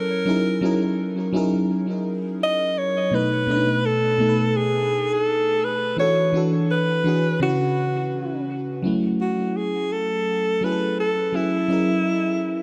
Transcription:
0.00 0.25 F#3 medium
0.00 0.26 C#4 medium
0.00 0.28 E4 medium
0.00 0.29 A4 medium
0.00 0.95 A#4 medium
0.25 0.54 F#3 medium
0.25 0.54 C#4 medium
0.25 0.55 D#4 medium
0.25 0.55 E4 medium
0.25 0.56 G#4 medium
0.30 0.56 A#4 medium
0.61 1.17 F#3 medium
0.61 1.17 C#4 medium
0.61 1.17 D#4 medium
0.61 1.18 E4 medium
0.61 1.18 G#4 medium
0.66 1.19 A#4 medium
1.33 2.38 F#3 medium
1.33 2.38 C#4 medium
1.33 2.39 D#4 medium
1.33 2.39 E4 medium
1.33 2.39 G#4 medium
1.37 2.40 A#4 loud
2.43 2.80 D#5 loud
2.78 3.16 C#5 loud
3.11 3.40 B2 medium
3.11 3.40 A3 medium
3.11 3.41 D#4 medium
3.11 3.87 B4 loud
3.16 3.42 B4 medium
3.47 4.02 B2 medium
3.47 4.03 A3 medium
3.47 3.57 D4 medium
3.51 4.04 B4 medium
3.56 4.07 D#4 medium
3.85 4.58 A4 loud
4.18 5.23 B2 medium
4.18 5.24 A3 medium
4.18 5.25 D#4 medium
4.23 4.29 A4 medium
4.29 5.29 B4 medium
4.57 5.14 G#4 loud
5.13 5.65 A4 loud
5.64 5.99 B4 medium
5.97 6.25 E3 medium
5.97 6.26 D4 medium
5.97 6.27 F#4 medium
5.97 6.42 C#5 loud
6.01 6.28 A4 medium
6.33 6.88 E3 medium
6.33 6.89 D4 medium
6.33 6.89 F#4 medium
6.37 6.90 A4 medium
6.71 7.38 B4 loud
7.04 7.41 E3 medium
7.04 7.42 D4 medium
7.04 7.42 F#4 medium
7.08 7.43 G#4 medium
7.40 8.56 C#3 medium
7.40 8.57 C#4 medium
7.40 7.50 E4 medium
7.40 8.45 F#4 medium
7.44 8.58 B4 medium
7.49 8.61 F#4 medium
8.82 9.88 F#3 medium
8.82 9.88 C#4 medium
8.82 9.89 E4 medium
8.87 9.90 A3 medium
9.21 9.58 F#4 medium
9.57 9.94 G#4 medium
9.92 10.66 A4 loud
10.61 11.16 F#3 medium
10.61 11.17 C#4 medium
10.61 11.18 E4 medium
10.61 10.99 B4 medium
10.65 10.72 G#4 medium
10.72 11.22 A4 medium
11.00 11.37 A4 loud
11.32 11.61 F#3 medium
11.32 11.62 C#4 medium
11.32 11.62 E4 medium
11.32 12.63 E4 medium
11.37 11.63 G#4 medium
11.68 12.63 F#3 medium
11.68 12.63 C#4 medium
11.68 12.63 E4 medium
11.68 12.63 G#4 medium
11.68 12.63 D#5 medium
11.73 12.63 A#4 medium

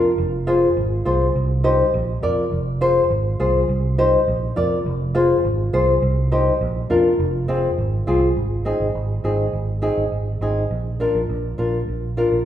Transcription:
0.00 0.12 F2 medium
0.18 0.65 F1 loud
0.47 0.68 F4 medium
0.47 0.68 G#4 medium
0.47 0.68 C5 medium
0.77 1.00 G#1 loud
1.05 1.29 C2 medium
1.05 1.26 F4 medium
1.05 1.26 G#4 medium
1.05 1.27 C5 medium
1.36 1.82 C2 loud
1.64 1.85 D#4 medium
1.64 1.85 G4 medium
1.64 1.85 C5 medium
1.94 2.17 A#1 loud
2.23 2.46 F2 medium
2.23 2.43 F4 medium
2.23 2.44 A#4 medium
2.23 2.44 D5 medium
2.52 2.99 F1 loud
2.81 3.02 F4 medium
2.81 3.02 G#4 medium
2.81 3.02 C5 loud
3.10 3.34 G#1 loud
3.40 3.63 C2 medium
3.40 3.60 F4 medium
3.40 3.61 G#4 medium
3.40 3.61 C5 medium
3.69 4.16 C2 loud
3.98 4.19 D#4 medium
3.98 4.19 G4 medium
3.98 4.19 C5 loud
4.28 4.51 A#1 loud
4.56 4.80 F2 loud
4.56 4.77 F4 medium
4.56 4.77 A#4 medium
4.56 4.77 D5 medium
4.86 5.33 F1 loud
5.15 5.35 F4 medium
5.15 5.36 G#4 medium
5.15 5.36 C5 medium
5.45 5.68 G#1 loud
5.73 5.97 C2 medium
5.73 5.94 F4 medium
5.73 5.94 G#4 medium
5.73 5.94 C5 medium
6.02 6.49 C2 loud
6.32 6.52 D#4 medium
6.32 6.53 G4 medium
6.32 6.53 C5 medium
6.61 6.85 A#1 loud
6.90 7.14 F2 loud
6.90 7.11 D4 medium
6.90 7.11 F4 medium
6.90 7.11 A#4 medium
7.19 7.66 F1 loud
7.48 7.69 C4 medium
7.48 7.69 F4 medium
7.48 7.69 G#4 medium
7.78 8.02 G#1 loud
8.07 8.31 C2 medium
8.07 8.28 C4 medium
8.07 8.28 F4 medium
8.07 8.28 G#4 medium
8.36 8.72 G#1 medium
8.65 8.86 C4 medium
8.65 8.86 D#4 medium
8.65 8.87 G#4 medium
8.80 8.92 G#1 medium
8.95 9.18 G#1 medium
9.24 9.48 G#1 medium
9.24 9.45 C4 medium
9.24 9.45 D#4 medium
9.24 9.45 G#4 medium
9.53 9.89 G#1 medium
9.82 10.03 C4 medium
9.82 10.03 D#4 medium
9.82 10.03 G#4 medium
9.97 10.09 G#1 medium
10.12 10.36 G#1 medium
10.41 10.65 G#1 loud
10.41 10.62 C4 medium
10.41 10.62 D#4 medium
10.41 10.63 G#4 medium
10.71 11.06 A#1 loud
11.00 11.21 D4 medium
11.00 11.21 F4 medium
11.00 11.21 A#4 medium
11.15 11.27 A#1 medium
11.29 11.53 A#1 medium
11.58 11.82 A#1 medium
11.58 11.79 D4 medium
11.58 11.79 F4 medium
11.58 11.79 A#4 medium
11.88 12.23 A#1 medium
12.17 12.38 D4 medium
12.17 12.38 F4 medium
12.17 12.38 A#4 medium
12.32 12.44 A#1 medium

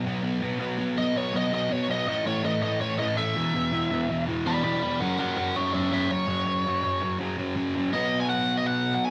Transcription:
0.05 0.22 B2 medium
0.05 0.22 F#3 loud
0.05 0.23 B3 loud
0.23 0.40 B2 medium
0.23 0.41 F#3 medium
0.23 0.41 B3 medium
0.41 0.58 B2 medium
0.41 0.59 F#3 medium
0.41 0.59 B3 loud
0.59 0.77 B2 loud
0.59 0.78 F#3 loud
0.59 0.78 B3 medium
0.78 0.96 B2 medium
0.78 0.97 F#3 medium
0.78 0.97 B3 medium
0.97 1.14 B2 medium
0.97 1.14 F#3 medium
0.97 1.15 B3 medium
0.97 1.17 D#5 medium
1.15 1.32 B2 medium
1.15 1.33 F#3 medium
1.15 1.33 B3 medium
1.15 1.34 C#5 medium
1.33 1.51 B2 medium
1.33 1.51 F#3 loud
1.33 1.52 B3 medium
1.33 1.53 D#5 medium
1.52 1.68 B2 medium
1.52 1.70 F#3 medium
1.52 1.70 B3 medium
1.52 1.72 D#5 loud
1.70 1.87 B2 medium
1.70 1.88 F#3 medium
1.70 1.88 B3 medium
1.70 1.91 C#5 loud
1.88 2.06 B2 medium
1.88 2.06 F#3 medium
1.88 2.06 B3 loud
1.88 2.07 D#5 medium
2.08 2.24 A2 loud
2.08 2.25 E3 loud
2.08 2.25 A3 loud
2.08 2.26 D#5 loud
2.25 2.43 A2 medium
2.25 2.44 E3 medium
2.25 2.44 A3 medium
2.25 2.44 C#5 medium
2.44 2.61 A2 medium
2.44 2.62 E3 medium
2.44 2.62 A3 loud
2.44 2.61 D#5 medium
2.62 2.79 A2 medium
2.62 2.80 E3 medium
2.62 2.80 A3 medium
2.62 2.80 D#5 loud
2.80 2.98 A2 loud
2.80 2.99 E3 loud
2.80 3.00 A3 loud
2.80 2.98 C#5 loud
2.99 3.16 A2 medium
2.99 3.16 E3 medium
2.99 3.17 A3 loud
2.99 3.17 D#5 medium
3.17 3.34 A2 medium
3.17 3.35 E3 medium
3.17 3.35 A3 loud
3.17 4.24 E5 loud
3.36 3.53 E2 loud
3.36 3.54 B2 loud
3.36 3.55 E3 loud
3.54 3.71 E2 medium
3.54 3.71 B2 loud
3.54 3.72 E3 loud
3.72 3.89 E2 medium
3.72 3.90 B2 medium
3.72 3.91 E3 loud
3.91 4.08 E2 medium
3.91 4.09 B2 medium
3.91 4.09 E3 loud
4.09 4.26 E2 medium
4.09 4.27 B2 medium
4.09 4.28 E3 medium
4.27 4.45 E2 loud
4.27 4.45 B2 loud
4.27 4.46 E3 loud
4.46 4.63 E2 medium
4.46 4.63 B2 loud
4.46 4.64 E3 loud
4.46 4.62 D5 medium
4.46 4.63 B5 loud
4.63 4.81 E2 medium
4.63 4.81 B2 medium
4.63 4.82 E3 medium
4.63 4.81 D5 medium
4.63 4.82 B5 loud
4.82 4.99 E2 medium
4.82 4.99 B2 loud
4.82 5.00 E3 loud
4.82 4.99 D5 medium
4.82 5.00 B5 medium
5.00 5.19 F#2 medium
5.00 5.19 C#3 loud
5.00 5.20 F#3 loud
5.00 5.17 A#4 medium
5.00 5.18 F#5 loud
5.19 5.37 F#2 medium
5.19 5.37 C#3 medium
5.19 5.38 F#3 medium
5.19 5.36 A#4 medium
5.19 5.37 F#5 medium
5.37 5.55 F#2 medium
5.37 5.55 C#3 loud
5.37 5.56 F#3 loud
5.37 5.54 A#4 medium
5.37 5.57 F#5 medium
5.55 5.72 F#2 medium
5.55 5.73 C#3 medium
5.55 5.74 F#3 medium
5.55 5.72 C#5 medium
5.55 5.74 E5 loud
5.73 5.90 F#2 loud
5.73 5.91 C#3 loud
5.73 5.92 F#3 loud
5.73 5.90 C#5 medium
5.73 5.92 E5 medium
5.91 6.09 F#2 medium
5.91 6.10 C#3 medium
5.91 6.11 F#3 loud
5.91 6.09 C#5 medium
5.91 6.11 E5 medium
6.10 6.27 F#2 medium
6.10 6.27 C#3 medium
6.10 6.29 F#3 medium
6.10 7.17 C#5 loud
6.28 6.45 F#2 loud
6.28 6.45 C#3 medium
6.28 6.46 F#3 loud
6.46 6.64 F#2 medium
6.46 6.65 C#3 loud
6.46 6.66 F#3 loud
6.66 6.82 F#2 medium
6.66 6.83 C#3 medium
6.66 6.83 F#3 loud
6.83 7.01 F#2 medium
6.83 7.01 C#3 medium
6.83 7.02 F#3 loud
7.02 7.18 F#2 medium
7.02 7.18 C#3 medium
7.02 7.19 F#3 medium
7.19 7.36 F#2 loud
7.19 7.37 C#3 loud
7.19 7.37 F#3 loud
7.37 7.54 F#2 medium
7.37 7.55 C#3 loud
7.37 7.55 F#3 loud
7.55 7.73 F#2 medium
7.55 7.74 C#3 medium
7.55 7.75 F#3 medium
7.75 7.92 F#2 medium
7.75 7.91 C#3 medium
7.75 7.92 F#3 medium
7.92 9.10 B2 medium
7.92 9.10 F#3 loud
7.92 9.10 B3 medium
7.92 8.18 D#5 loud
8.20 8.29 G#5 loud
8.29 8.57 F#5 loud
8.57 8.66 D#5 medium
8.66 8.93 F#5 medium
8.94 9.03 F#5 loud
9.05 9.10 G#5 loud

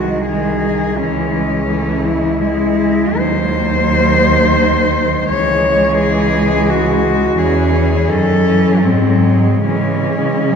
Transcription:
0.00 0.99 C2 soft
0.00 0.27 D#3 soft
0.00 0.25 G#3 soft
0.00 0.26 F#4 medium
0.26 0.97 D#3 soft
0.26 0.97 G#3 soft
0.26 0.99 G#4 medium
0.98 3.17 C#2 soft
0.98 1.68 E3 soft
0.98 1.68 G#3 soft
0.98 2.06 C#4 medium
1.69 2.42 E3 soft
1.69 2.05 A3 soft
2.04 2.40 G#3 soft
2.04 2.41 E4 medium
2.40 3.16 G#3 soft
2.40 3.17 G#3 soft
2.40 3.19 E4 medium
3.17 5.25 D#2 medium
3.17 5.30 D#3 soft
3.17 5.25 F#3 soft
3.17 5.28 C5 medium
5.29 7.34 C#2 medium
5.29 7.37 E3 medium
5.29 7.34 G#3 medium
5.29 5.97 C#5 medium
5.98 6.71 G#4 medium
6.69 7.40 F#4 medium
7.37 8.10 E2 medium
7.37 8.10 E3 soft
7.37 8.05 C#4 soft
7.37 8.10 G#4 medium
8.08 8.85 F#2 medium
8.08 8.45 D#3 soft
8.08 8.86 C#4 medium
8.08 8.83 A4 medium
8.45 8.85 E3 soft
8.82 9.64 G#2 medium
8.82 9.65 F#3 soft
8.82 9.65 G#3 soft
8.82 9.65 C4 medium
9.65 10.56 C#3 soft
9.65 10.38 E3 soft
9.65 10.56 G#3 soft
9.65 10.56 C#4 medium
10.47 10.56 F#3 medium

